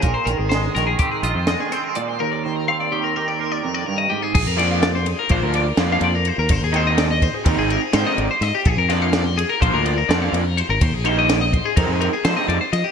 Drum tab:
CC |---------|---------|x--------|---------|
RD |---------|---------|-xxxxxxxx|xxxxxxxxx|
HH |xxxxxxxxx|---------|---------|---------|
SD |--oo--oo-|---------|-oo---o--|--oo--o-o|
BD |o---o----|---------|o---o----|o--oo----|

CC |---------|---------|
RD |xxxxxxxxx|xxxxxxxxx|
HH |---------|---------|
SD |-oo---o--|--o---o-o|
BD |o---o----|o--oo----|